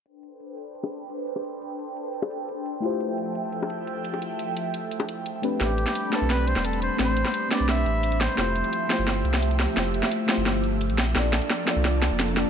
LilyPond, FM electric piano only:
\new Staff \with { instrumentName = "FM electric piano" } { \time 4/4 \key a \minor \tempo 4 = 173 r1 | r1 | <a e' f' g' c''>1~ | <a e' f' g' c''>2.~ <a e' f' g' c''>8 <a c' d' g' b'>8 |
<a c' d' g' b'>4. <a c' d' g' b'>2~ <a c' d' g' b'>8 | <a c' d' g' c''>4. <a c' d' g' b'>2~ <a c' d' g' b'>8 | <a e' f' g' c''>4. <a e' f' g' c''>2~ <a e' f' g' c''>8 | <a e' f' g' c''>4. <a e' f' g' c''>2 r8 |
<bes d' f' a' d''>4. <bes d' f' a' d''>8 <bes d' f' a' d''>4. <bes d' f' a' d''>8 | }